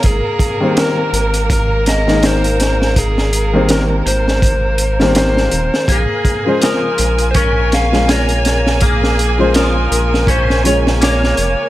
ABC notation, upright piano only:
X:1
M:4/4
L:1/16
Q:"Swing 16ths" 1/4=82
K:Bbdor
V:1 name="Upright piano" clef=bass
z3 [E,G,B,C]8 [E,A,B,E]4- [E,A,B,E]- | [E,A,B,E]3 [E,G,B,C]6- [E,G,B,C] z [E,G,B,C]4- [E,G,B,C] | z3 [D,F,A,c]8 [D,F,A,D]4- [D,F,A,D]- | [D,F,A,D]3 [D,F,A,c]6- [D,F,A,c] [D,F,A,d]6 |]